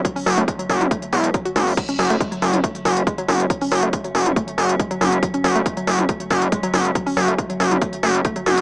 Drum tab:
CC |----------------|x---------------|----------------|----------------|
HH |xooxxxoxxxoxxxoo|xxoxxxoxxxoxxxox|xooxxxoxxxoxxxox|xxoxxxoxxxoxxxox|
T2 |---o---o------o-|-------o------o-|-------o------o-|-------o------o-|
BD |o---o-o-o---o---|o---o---o-o-o---|o---o---o---o---|o---o---o-o-o---|

CC |----------------|
HH |xooxxxoxxxoxxxox|
T2 |-------o------o-|
BD |o---o---o---o---|